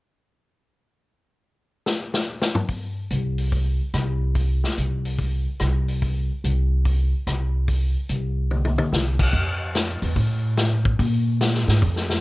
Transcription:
1.86 snare
2.14 snare
2.42 snare
2.55 mid tom
2.69 kick, open hi-hat
3.10 upright bass C2, closed hi-hat
3.38 open hi-hat
3.52 kick, open hi-hat
3.94 upright bass C2, cross-stick, closed hi-hat
4.35 kick, open hi-hat
4.64 snare
4.77 upright bass C2, closed hi-hat
5.05 open hi-hat
5.19 kick, open hi-hat
5.60 upright bass C2, cross-stick, closed hi-hat
5.88 open hi-hat
6.02 kick, open hi-hat
6.44 upright bass C2, closed hi-hat
6.85 kick, open hi-hat
7.27 upright bass C2, cross-stick, closed hi-hat
7.68 kick, open hi-hat
8.09 upright bass C2, closed hi-hat
8.51 high tom
8.65 high tom
8.78 high tom
8.92 upright bass C2, snare
9.19 kick, crash
9.33 upright bass F2, kick
9.75 snare, closed hi-hat
10.02 upright bass E2, open hi-hat
10.16 upright bass A2, kick, open hi-hat
10.57 snare, closed hi-hat
10.85 kick
10.99 upright bass A#2, kick, open hi-hat
11.41 snare, closed hi-hat
11.54 snare
11.68 upright bass G#2, snare, open hi-hat
11.82 upright bass F2, kick, open hi-hat
11.96 snare
12.10 snare

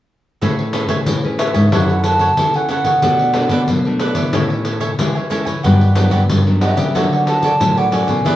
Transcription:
0.41 nylon-string guitar A2 A3 C#4 G#4 B4, cavaquinho A4 C#5 E5 G#5, pandeiro
0.59 pandeiro
0.73 nylon-string guitar C#4 G#4 B4, cavaquinho A4 C#5 E5 G#5, pandeiro
0.89 nylon-string guitar A2, cavaquinho A4 C#5 E5 G#5, pandeiro
1.06 nylon-string guitar A2 E3, pandeiro
1.24 nylon-string guitar C#4 G#4 B4, pandeiro
1.38 cavaquinho A4 C#5 E5 G#5, flute E5, pandeiro
1.54 nylon-string guitar G#2, cavaquinho C#5 E5 G#5, pandeiro
1.72 nylon-string guitar F#3 C#4 E4 A4, cavaquinho E4 A4 C#5 F#5, pandeiro
1.89 flute F#5, pandeiro
2.04 cavaquinho E4 A4 C#5 F#5, flute A5, pandeiro
2.19 cavaquinho E4 A4 C#5 F#5, pandeiro
2.37 nylon-string guitar C#3 C#4 E4 A4, pandeiro
2.54 cavaquinho A4 C#5 F#5, flute G#5, pandeiro
2.69 nylon-string guitar C#4 E4 A4, cavaquinho E4 A4 C#5 F#5, flute F#5, pandeiro
2.84 nylon-string guitar C#3, cavaquinho A4 C#5 F#5, pandeiro
3.02 nylon-string guitar B2 A3 D4 F#4, cavaquinho D4 A4 B4 D5, pandeiro
3.19 pandeiro
3.34 nylon-string guitar A3 D4 F#4, cavaquinho D4 A4 B4 D5, pandeiro
3.49 nylon-string guitar B2, cavaquinho D4 A4 B4 D5, pandeiro
3.68 nylon-string guitar B2 F#3, pandeiro
3.85 nylon-string guitar A3 D4 F#4, pandeiro
4.00 cavaquinho D4 A4 B4 D5, pandeiro
4.15 nylon-string guitar E3, cavaquinho A4 B4 D5, pandeiro
4.33 nylon-string guitar A2 C#4 E4, cavaquinho A4 C#5 E5 G#5, pandeiro
4.50 pandeiro
4.65 cavaquinho A4 C#5 E5 G#5, pandeiro
4.80 cavaquinho A4 C#5 E5 G#5, pandeiro
4.99 nylon-string guitar E3 G#3 C#4 E4, pandeiro
5.15 cavaquinho C#5 E5 G#5, pandeiro
5.30 nylon-string guitar G#3 C#4 E4, cavaquinho A4 C#5 E5 G#5, pandeiro
5.45 nylon-string guitar E3, cavaquinho C#5 E5 G#5, pandeiro
5.63 nylon-string guitar G2 F#3 B3 D4, cavaquinho F#4 G4 B4 D5, pandeiro
5.81 pandeiro
5.95 nylon-string guitar F#3 B3 D4, cavaquinho F#4 G4 B4 D5, pandeiro
6.11 nylon-string guitar G2, cavaquinho F#4 G4 B4 D5, pandeiro
6.29 nylon-string guitar G2 D3, pandeiro
6.47 nylon-string guitar F#3 B3 D4, pandeiro
6.61 cavaquinho F#4 G4 B4 D5, flute E5, pandeiro
6.77 nylon-string guitar C#3, cavaquinho G4 B4 D5, pandeiro
6.95 nylon-string guitar D3 F#3 A3, cavaquinho F#4 A4 C#5 D5, pandeiro
7.12 flute F#5, pandeiro
7.27 cavaquinho F#4 A4 C#5 D5, flute A5, pandeiro
7.42 cavaquinho F#4 A4 C#5 D5, pandeiro
7.60 nylon-string guitar A2 F#3 A3 C#4, pandeiro
7.77 cavaquinho A4 C#5 D5, flute F#5, pandeiro
7.91 nylon-string guitar F#3 A3 C#4, cavaquinho F#4 A4 C#5 D5, flute G#5, pandeiro
8.07 nylon-string guitar B2, cavaquinho A4 C#5 D5, pandeiro
8.25 nylon-string guitar E3 B3 D4 G#4, cavaquinho E4 G#4 B4 D5, pandeiro

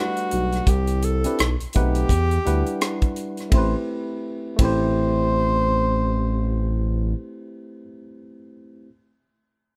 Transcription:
Already playing: tine electric piano G3 A3 D4 F#4 B4
0.00 tenor saxophone F#4
0.17 closed hi-hat
0.31 analog synth bass B1, closed hi-hat
0.52 cross-stick, closed hi-hat
0.67 analog synth bass C2, tenor saxophone G4, kick, closed hi-hat
0.87 closed hi-hat
1.02 tenor saxophone A4, closed hi-hat
1.24 tine electric piano C4 D4 E4 G4 B4, closed hi-hat
1.38 analog synth bass B1, cross-stick, closed hi-hat
1.60 analog synth bass B1, closed hi-hat
1.73 analog synth bass B1, tine electric piano A3 C4 D#4 B4 F#5, tenor saxophone G4, kick, closed hi-hat
1.95 closed hi-hat
2.09 analog synth bass E2, kick, closed hi-hat
2.31 closed hi-hat
2.45 analog synth bass D2, tine electric piano G3 D4 E4 B4 F#5, closed hi-hat
2.66 closed hi-hat
2.81 cross-stick, closed hi-hat
3.02 kick, closed hi-hat
3.16 closed hi-hat
3.37 cross-stick, closed hi-hat
3.49 analog synth bass A1, tine electric piano A3 C4, kick, ride
3.53 tine electric piano E4 G4, tenor saxophone C5
3.58 tine electric piano B4
4.57 analog synth bass A1, tine electric piano A3 C4, kick, ride
4.61 tine electric piano E4 G4, tenor saxophone C5
4.65 tine electric piano C5

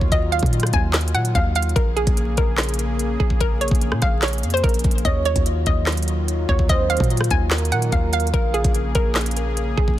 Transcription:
Already playing: 808-style bass D#2, analog synth pad D#3 F#3 F4
0.01 kick
0.12 synth pluck D#5, kick, closed hi-hat
0.32 synth pluck F5, closed hi-hat
0.39 808-style bass A#2, kick, closed hi-hat
0.46 closed hi-hat
0.53 closed hi-hat
0.60 cross-stick, closed hi-hat
0.67 closed hi-hat
0.73 808-style bass D#2, synth pluck G#5, kick, closed hi-hat
0.93 snare, clap, closed hi-hat
1.01 closed hi-hat
1.08 closed hi-hat
1.14 808-style bass A#2, synth pluck F#5, closed hi-hat
1.25 closed hi-hat
1.35 808-style bass D#2, synth pluck F5, kick, closed hi-hat
1.55 synth pluck F5, closed hi-hat, open hi-hat
1.62 closed hi-hat
1.69 closed hi-hat
1.76 808-style bass A#1, analog synth pad C#3 A#3 G#4, synth pluck A#4, kick, closed hi-hat
1.96 synth pluck G#4, closed hi-hat
2.07 808-style bass A#1, kick, closed hi-hat
2.17 closed hi-hat
2.37 808-style bass A#1, synth pluck A#4, kick, closed hi-hat
2.58 snare, clap, closed hi-hat
2.63 closed hi-hat
2.69 closed hi-hat
2.74 closed hi-hat
2.79 closed hi-hat
2.99 closed hi-hat
3.20 808-style bass A#1, synth pluck G#4, kick
3.30 kick
3.41 synth pluck A#4, kick, closed hi-hat
3.61 synth pluck C#5, closed hi-hat
3.68 808-style bass A#1, kick, closed hi-hat
3.75 closed hi-hat
3.81 closed hi-hat
3.92 808-style bass A#2, cross-stick
4.02 808-style bass A#1, synth pluck F5, kick, cross-stick, closed hi-hat
4.22 synth pluck C#5, snare, clap, closed hi-hat
4.28 closed hi-hat
4.33 closed hi-hat
4.38 closed hi-hat
4.43 808-style bass F2, closed hi-hat
4.50 synth pluck C5, closed hi-hat
4.57 closed hi-hat
4.63 808-style bass A#1, synth pluck A#4, kick, closed hi-hat
4.69 closed hi-hat
4.74 closed hi-hat
4.79 closed hi-hat
4.84 808-style bass A#1, kick, closed hi-hat, open hi-hat
4.91 closed hi-hat
4.98 closed hi-hat
5.05 808-style bass D#2, analog synth pad D#3 F#3 F4, soft synth lead C#5, synth pluck D#5, kick, closed hi-hat
5.25 synth pluck C#5, closed hi-hat
5.36 808-style bass D#2, kick, closed hi-hat
5.46 closed hi-hat
5.66 808-style bass D#2, synth pluck D#5, kick, closed hi-hat
5.86 snare, clap, closed hi-hat
5.92 closed hi-hat
5.97 closed hi-hat
6.02 closed hi-hat
6.08 closed hi-hat
6.28 closed hi-hat
6.49 808-style bass D#2, synth pluck C#5, kick
6.59 kick
6.69 soft synth lead C5, synth pluck D#5, kick, closed hi-hat
6.90 synth pluck F5, closed hi-hat
6.97 808-style bass A#2, kick, closed hi-hat
7.04 closed hi-hat
7.10 closed hi-hat
7.17 cross-stick, closed hi-hat
7.24 closed hi-hat
7.31 808-style bass D#2, synth pluck G#5, kick, closed hi-hat
7.51 soft synth lead A#4, snare, clap, closed hi-hat
7.58 closed hi-hat
7.65 closed hi-hat
7.72 808-style bass A#2, synth pluck F#5, closed hi-hat
7.82 closed hi-hat
7.92 808-style bass D#2, synth pluck F5, kick, closed hi-hat
8.13 synth pluck F5, closed hi-hat, open hi-hat
8.20 closed hi-hat
8.27 closed hi-hat
8.34 808-style bass A#1, analog synth pad C#3 A#3 G#4, synth pluck A#4, soft synth lead F5, kick, closed hi-hat
8.54 synth pluck G#4, closed hi-hat
8.64 808-style bass A#1, kick, closed hi-hat
8.75 closed hi-hat
8.95 808-style bass A#1, synth pluck A#4, kick, closed hi-hat
9.15 snare, clap, closed hi-hat
9.21 closed hi-hat
9.26 closed hi-hat
9.31 closed hi-hat
9.37 closed hi-hat
9.57 closed hi-hat
9.77 808-style bass A#1, synth pluck G#4, kick
9.88 kick

